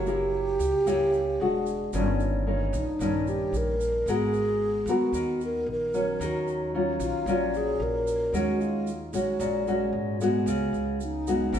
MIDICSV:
0, 0, Header, 1, 5, 480
1, 0, Start_track
1, 0, Key_signature, -6, "minor"
1, 0, Tempo, 533808
1, 1738, Time_signature, 4, 2, 24, 8
1, 10424, End_track
2, 0, Start_track
2, 0, Title_t, "Alto flute"
2, 0, Program_c, 0, 73
2, 0, Note_on_c, 0, 66, 88
2, 80, Note_on_c, 0, 67, 106
2, 93, Note_off_c, 0, 66, 0
2, 1272, Note_on_c, 0, 68, 87
2, 1286, Note_off_c, 0, 67, 0
2, 1745, Note_off_c, 0, 68, 0
2, 1763, Note_on_c, 0, 65, 72
2, 2196, Note_off_c, 0, 65, 0
2, 2482, Note_on_c, 0, 63, 90
2, 2954, Note_on_c, 0, 67, 89
2, 2968, Note_off_c, 0, 63, 0
2, 3210, Note_on_c, 0, 70, 96
2, 3223, Note_off_c, 0, 67, 0
2, 3686, Note_on_c, 0, 68, 97
2, 3700, Note_off_c, 0, 70, 0
2, 4417, Note_on_c, 0, 66, 87
2, 4431, Note_off_c, 0, 68, 0
2, 4878, Note_off_c, 0, 66, 0
2, 4899, Note_on_c, 0, 70, 85
2, 5104, Note_off_c, 0, 70, 0
2, 5137, Note_on_c, 0, 70, 87
2, 5616, Note_on_c, 0, 66, 84
2, 5630, Note_off_c, 0, 70, 0
2, 6076, Note_off_c, 0, 66, 0
2, 6329, Note_on_c, 0, 65, 95
2, 6805, Note_on_c, 0, 68, 90
2, 6818, Note_off_c, 0, 65, 0
2, 7037, Note_on_c, 0, 70, 90
2, 7050, Note_off_c, 0, 68, 0
2, 7514, Note_on_c, 0, 66, 88
2, 7527, Note_off_c, 0, 70, 0
2, 7743, Note_on_c, 0, 65, 92
2, 7756, Note_off_c, 0, 66, 0
2, 8221, Note_off_c, 0, 65, 0
2, 8229, Note_on_c, 0, 66, 83
2, 9148, Note_off_c, 0, 66, 0
2, 9919, Note_on_c, 0, 63, 77
2, 10413, Note_off_c, 0, 63, 0
2, 10424, End_track
3, 0, Start_track
3, 0, Title_t, "Nylon-string guitar"
3, 0, Program_c, 1, 24
3, 0, Note_on_c, 1, 54, 60
3, 58, Note_on_c, 1, 58, 67
3, 64, Note_on_c, 1, 64, 56
3, 70, Note_on_c, 1, 67, 63
3, 740, Note_off_c, 1, 58, 0
3, 743, Note_off_c, 1, 64, 0
3, 744, Note_off_c, 1, 67, 0
3, 754, Note_off_c, 1, 54, 0
3, 780, Note_on_c, 1, 58, 51
3, 781, Note_on_c, 1, 49, 58
3, 784, Note_on_c, 1, 64, 54
3, 788, Note_on_c, 1, 67, 58
3, 1087, Note_off_c, 1, 58, 0
3, 1090, Note_off_c, 1, 64, 0
3, 1092, Note_off_c, 1, 67, 0
3, 1236, Note_off_c, 1, 49, 0
3, 1260, Note_on_c, 1, 56, 57
3, 1267, Note_on_c, 1, 62, 47
3, 1273, Note_on_c, 1, 66, 56
3, 1720, Note_off_c, 1, 56, 0
3, 1724, Note_off_c, 1, 62, 0
3, 1725, Note_off_c, 1, 66, 0
3, 1742, Note_on_c, 1, 43, 61
3, 1746, Note_on_c, 1, 51, 51
3, 1751, Note_on_c, 1, 61, 67
3, 1752, Note_on_c, 1, 58, 54
3, 2183, Note_off_c, 1, 51, 0
3, 2185, Note_off_c, 1, 58, 0
3, 2186, Note_off_c, 1, 61, 0
3, 2219, Note_on_c, 1, 51, 55
3, 2223, Note_on_c, 1, 58, 56
3, 2229, Note_on_c, 1, 61, 65
3, 2528, Note_off_c, 1, 51, 0
3, 2529, Note_off_c, 1, 58, 0
3, 2533, Note_off_c, 1, 61, 0
3, 2678, Note_off_c, 1, 43, 0
3, 2702, Note_on_c, 1, 43, 51
3, 2706, Note_on_c, 1, 51, 54
3, 2708, Note_on_c, 1, 58, 54
3, 2713, Note_on_c, 1, 61, 61
3, 3347, Note_off_c, 1, 51, 0
3, 3349, Note_off_c, 1, 58, 0
3, 3350, Note_off_c, 1, 61, 0
3, 3637, Note_off_c, 1, 43, 0
3, 3670, Note_on_c, 1, 56, 58
3, 3673, Note_on_c, 1, 59, 58
3, 3677, Note_on_c, 1, 66, 62
3, 3681, Note_on_c, 1, 70, 61
3, 4347, Note_off_c, 1, 59, 0
3, 4350, Note_off_c, 1, 66, 0
3, 4352, Note_off_c, 1, 70, 0
3, 4390, Note_on_c, 1, 59, 66
3, 4395, Note_on_c, 1, 66, 60
3, 4400, Note_on_c, 1, 70, 61
3, 4601, Note_off_c, 1, 56, 0
3, 4628, Note_on_c, 1, 51, 53
3, 5306, Note_off_c, 1, 59, 0
3, 5309, Note_off_c, 1, 66, 0
3, 5310, Note_off_c, 1, 70, 0
3, 5341, Note_on_c, 1, 54, 56
3, 5346, Note_on_c, 1, 61, 59
3, 5560, Note_off_c, 1, 51, 0
3, 5581, Note_on_c, 1, 51, 61
3, 6022, Note_off_c, 1, 54, 0
3, 6024, Note_off_c, 1, 61, 0
3, 6064, Note_on_c, 1, 54, 60
3, 6068, Note_on_c, 1, 61, 59
3, 6073, Note_on_c, 1, 65, 66
3, 6504, Note_off_c, 1, 54, 0
3, 6506, Note_off_c, 1, 61, 0
3, 6507, Note_off_c, 1, 65, 0
3, 6517, Note_off_c, 1, 51, 0
3, 6543, Note_on_c, 1, 46, 61
3, 6546, Note_on_c, 1, 54, 58
3, 6547, Note_on_c, 1, 61, 54
3, 6552, Note_on_c, 1, 65, 67
3, 7463, Note_off_c, 1, 54, 0
3, 7466, Note_off_c, 1, 61, 0
3, 7466, Note_off_c, 1, 65, 0
3, 7478, Note_off_c, 1, 46, 0
3, 7495, Note_on_c, 1, 51, 56
3, 7498, Note_on_c, 1, 56, 54
3, 7504, Note_on_c, 1, 61, 58
3, 7504, Note_on_c, 1, 66, 65
3, 7975, Note_off_c, 1, 56, 0
3, 7976, Note_off_c, 1, 61, 0
3, 7979, Note_off_c, 1, 66, 0
3, 8213, Note_on_c, 1, 56, 56
3, 8217, Note_on_c, 1, 61, 63
3, 8221, Note_on_c, 1, 66, 57
3, 8434, Note_off_c, 1, 51, 0
3, 8455, Note_on_c, 1, 46, 54
3, 8658, Note_off_c, 1, 56, 0
3, 8659, Note_off_c, 1, 61, 0
3, 8662, Note_off_c, 1, 66, 0
3, 8698, Note_on_c, 1, 56, 59
3, 8704, Note_on_c, 1, 61, 56
3, 8706, Note_on_c, 1, 66, 67
3, 9141, Note_off_c, 1, 56, 0
3, 9142, Note_off_c, 1, 61, 0
3, 9144, Note_off_c, 1, 66, 0
3, 9185, Note_on_c, 1, 56, 64
3, 9188, Note_on_c, 1, 59, 59
3, 9193, Note_on_c, 1, 66, 60
3, 9393, Note_off_c, 1, 46, 0
3, 9422, Note_on_c, 1, 49, 59
3, 9863, Note_off_c, 1, 56, 0
3, 9865, Note_off_c, 1, 59, 0
3, 9866, Note_off_c, 1, 66, 0
3, 10139, Note_on_c, 1, 56, 55
3, 10142, Note_on_c, 1, 59, 61
3, 10148, Note_on_c, 1, 66, 63
3, 10356, Note_off_c, 1, 49, 0
3, 10371, Note_on_c, 1, 44, 59
3, 10424, Note_off_c, 1, 44, 0
3, 10424, Note_off_c, 1, 56, 0
3, 10424, Note_off_c, 1, 59, 0
3, 10424, Note_off_c, 1, 66, 0
3, 10424, End_track
4, 0, Start_track
4, 0, Title_t, "Upright bass"
4, 0, Program_c, 2, 32
4, 0, Note_on_c, 2, 30, 86
4, 499, Note_off_c, 2, 30, 0
4, 533, Note_on_c, 2, 37, 90
4, 646, Note_off_c, 2, 37, 0
4, 775, Note_on_c, 2, 37, 83
4, 1223, Note_off_c, 2, 37, 0
4, 1258, Note_on_c, 2, 28, 77
4, 1705, Note_off_c, 2, 28, 0
4, 1737, Note_on_c, 2, 31, 94
4, 2422, Note_off_c, 2, 31, 0
4, 2453, Note_on_c, 2, 34, 90
4, 2567, Note_off_c, 2, 34, 0
4, 2691, Note_on_c, 2, 34, 81
4, 3141, Note_off_c, 2, 34, 0
4, 3172, Note_on_c, 2, 34, 83
4, 3622, Note_off_c, 2, 34, 0
4, 3652, Note_on_c, 2, 32, 89
4, 4340, Note_off_c, 2, 32, 0
4, 4368, Note_on_c, 2, 39, 96
4, 4485, Note_off_c, 2, 39, 0
4, 4608, Note_on_c, 2, 39, 87
4, 5060, Note_off_c, 2, 39, 0
4, 5094, Note_on_c, 2, 34, 84
4, 5543, Note_off_c, 2, 34, 0
4, 5573, Note_on_c, 2, 39, 89
4, 6260, Note_off_c, 2, 39, 0
4, 6291, Note_on_c, 2, 34, 92
4, 6407, Note_off_c, 2, 34, 0
4, 6529, Note_on_c, 2, 34, 91
4, 6980, Note_off_c, 2, 34, 0
4, 7012, Note_on_c, 2, 34, 88
4, 7462, Note_off_c, 2, 34, 0
4, 7487, Note_on_c, 2, 39, 82
4, 8177, Note_off_c, 2, 39, 0
4, 8211, Note_on_c, 2, 34, 87
4, 8326, Note_off_c, 2, 34, 0
4, 8449, Note_on_c, 2, 34, 96
4, 8900, Note_off_c, 2, 34, 0
4, 8926, Note_on_c, 2, 44, 85
4, 9378, Note_off_c, 2, 44, 0
4, 9407, Note_on_c, 2, 37, 90
4, 9635, Note_off_c, 2, 37, 0
4, 9647, Note_on_c, 2, 37, 80
4, 10336, Note_off_c, 2, 37, 0
4, 10364, Note_on_c, 2, 32, 92
4, 10424, Note_off_c, 2, 32, 0
4, 10424, End_track
5, 0, Start_track
5, 0, Title_t, "Drums"
5, 58, Note_on_c, 9, 82, 27
5, 147, Note_off_c, 9, 82, 0
5, 540, Note_on_c, 9, 82, 63
5, 630, Note_off_c, 9, 82, 0
5, 781, Note_on_c, 9, 82, 65
5, 871, Note_off_c, 9, 82, 0
5, 1019, Note_on_c, 9, 82, 24
5, 1109, Note_off_c, 9, 82, 0
5, 1495, Note_on_c, 9, 82, 53
5, 1585, Note_off_c, 9, 82, 0
5, 1736, Note_on_c, 9, 82, 64
5, 1826, Note_off_c, 9, 82, 0
5, 1979, Note_on_c, 9, 82, 26
5, 2069, Note_off_c, 9, 82, 0
5, 2458, Note_on_c, 9, 82, 59
5, 2548, Note_off_c, 9, 82, 0
5, 2701, Note_on_c, 9, 82, 56
5, 2791, Note_off_c, 9, 82, 0
5, 2941, Note_on_c, 9, 82, 26
5, 3031, Note_off_c, 9, 82, 0
5, 3180, Note_on_c, 9, 82, 50
5, 3270, Note_off_c, 9, 82, 0
5, 3421, Note_on_c, 9, 82, 60
5, 3511, Note_off_c, 9, 82, 0
5, 3663, Note_on_c, 9, 82, 60
5, 3753, Note_off_c, 9, 82, 0
5, 3900, Note_on_c, 9, 82, 24
5, 3990, Note_off_c, 9, 82, 0
5, 4379, Note_on_c, 9, 82, 62
5, 4469, Note_off_c, 9, 82, 0
5, 4620, Note_on_c, 9, 82, 63
5, 4710, Note_off_c, 9, 82, 0
5, 4863, Note_on_c, 9, 82, 27
5, 4953, Note_off_c, 9, 82, 0
5, 5341, Note_on_c, 9, 82, 52
5, 5430, Note_off_c, 9, 82, 0
5, 5584, Note_on_c, 9, 82, 66
5, 5674, Note_off_c, 9, 82, 0
5, 5822, Note_on_c, 9, 82, 27
5, 5912, Note_off_c, 9, 82, 0
5, 6296, Note_on_c, 9, 82, 67
5, 6386, Note_off_c, 9, 82, 0
5, 6539, Note_on_c, 9, 82, 62
5, 6628, Note_off_c, 9, 82, 0
5, 6779, Note_on_c, 9, 82, 26
5, 6869, Note_off_c, 9, 82, 0
5, 7259, Note_on_c, 9, 82, 58
5, 7349, Note_off_c, 9, 82, 0
5, 7499, Note_on_c, 9, 82, 64
5, 7589, Note_off_c, 9, 82, 0
5, 7742, Note_on_c, 9, 82, 25
5, 7832, Note_off_c, 9, 82, 0
5, 7974, Note_on_c, 9, 82, 55
5, 8064, Note_off_c, 9, 82, 0
5, 8214, Note_on_c, 9, 82, 67
5, 8303, Note_off_c, 9, 82, 0
5, 8453, Note_on_c, 9, 82, 60
5, 8543, Note_off_c, 9, 82, 0
5, 8699, Note_on_c, 9, 82, 25
5, 8789, Note_off_c, 9, 82, 0
5, 9178, Note_on_c, 9, 82, 59
5, 9268, Note_off_c, 9, 82, 0
5, 9415, Note_on_c, 9, 82, 71
5, 9505, Note_off_c, 9, 82, 0
5, 9657, Note_on_c, 9, 82, 27
5, 9747, Note_off_c, 9, 82, 0
5, 9895, Note_on_c, 9, 82, 53
5, 9984, Note_off_c, 9, 82, 0
5, 10136, Note_on_c, 9, 82, 69
5, 10226, Note_off_c, 9, 82, 0
5, 10378, Note_on_c, 9, 82, 63
5, 10424, Note_off_c, 9, 82, 0
5, 10424, End_track
0, 0, End_of_file